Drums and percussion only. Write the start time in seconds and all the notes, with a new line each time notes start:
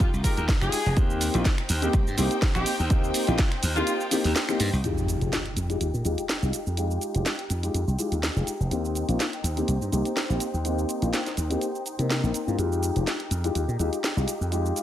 0.00 kick, closed hi-hat, shaker
0.14 shaker
0.24 kick, open hi-hat, shaker
0.37 closed hi-hat, shaker
0.48 kick, snare, shaker
0.61 finger snap, shaker
0.72 open hi-hat, shaker
0.86 shaker
0.97 kick, closed hi-hat, shaker
1.10 shaker
1.21 open hi-hat, shaker
1.34 closed hi-hat, shaker
1.45 kick, snare, closed hi-hat, shaker
1.58 finger snap, closed hi-hat
1.69 open hi-hat, shaker
1.82 closed hi-hat, shaker
1.93 kick, closed hi-hat, shaker
2.07 shaker
2.18 open hi-hat, shaker
2.31 closed hi-hat, shaker
2.42 kick, snare, shaker
2.55 finger snap, shaker
2.66 open hi-hat, shaker
2.80 shaker
2.90 kick, closed hi-hat, shaker
3.04 shaker
3.14 open hi-hat, shaker
3.27 closed hi-hat, shaker
3.38 kick, snare, closed hi-hat, shaker
3.52 finger snap, closed hi-hat
3.63 open hi-hat, shaker
3.76 closed hi-hat, shaker
3.87 closed hi-hat, shaker
4.01 shaker
4.11 open hi-hat, shaker
4.24 open hi-hat, shaker
4.36 snare, shaker
4.49 finger snap, shaker
4.60 open hi-hat, shaker
4.73 shaker
4.84 closed hi-hat, shaker
4.98 shaker
5.08 closed hi-hat, shaker
5.21 closed hi-hat, shaker
5.33 snare, closed hi-hat, shaker
5.46 closed hi-hat
5.57 closed hi-hat, shaker
5.70 closed hi-hat, shaker
5.81 closed hi-hat, shaker
5.94 shaker
6.05 closed hi-hat, shaker
6.18 closed hi-hat, shaker
6.29 snare, shaker
6.43 shaker
6.53 closed hi-hat, shaker
6.67 shaker
6.77 closed hi-hat, shaker
6.91 shaker
7.01 closed hi-hat, shaker
7.15 closed hi-hat, shaker
7.26 snare, closed hi-hat, shaker
7.39 closed hi-hat
7.50 closed hi-hat, shaker
7.63 closed hi-hat, shaker
7.74 closed hi-hat, shaker
7.88 shaker
7.99 closed hi-hat, shaker
8.12 closed hi-hat, shaker
8.23 snare, shaker
8.37 shaker
8.47 closed hi-hat, shaker
8.61 shaker
8.71 closed hi-hat, shaker
8.85 shaker
8.95 closed hi-hat, shaker
9.09 closed hi-hat, shaker
9.20 snare, closed hi-hat, shaker
9.33 closed hi-hat
9.44 closed hi-hat, shaker
9.57 closed hi-hat, shaker
9.68 closed hi-hat, shaker
9.82 shaker
9.92 closed hi-hat, shaker
10.05 closed hi-hat, shaker
10.17 snare, shaker
10.30 shaker
10.40 closed hi-hat, shaker
10.54 shaker
10.65 closed hi-hat, shaker
10.78 shaker
10.89 closed hi-hat, shaker
11.02 closed hi-hat, shaker
11.13 snare, closed hi-hat, shaker
11.26 snare, closed hi-hat, shaker
11.37 closed hi-hat, shaker
11.51 closed hi-hat, shaker
11.61 closed hi-hat, shaker
11.75 shaker
11.86 closed hi-hat, shaker
11.99 closed hi-hat, shaker
12.10 snare, shaker
12.24 shaker
12.34 closed hi-hat, shaker
12.48 shaker
12.59 closed hi-hat, shaker
12.72 shaker
12.83 closed hi-hat, shaker
12.96 closed hi-hat, shaker
13.07 snare, closed hi-hat, shaker
13.20 closed hi-hat
13.31 closed hi-hat, shaker
13.44 closed hi-hat, shaker
13.55 closed hi-hat, shaker
13.69 shaker
13.79 closed hi-hat, shaker
13.93 closed hi-hat, shaker
14.04 snare, shaker
14.17 shaker
14.28 closed hi-hat, shaker
14.42 shaker
14.52 closed hi-hat, shaker
14.66 shaker
14.76 closed hi-hat, shaker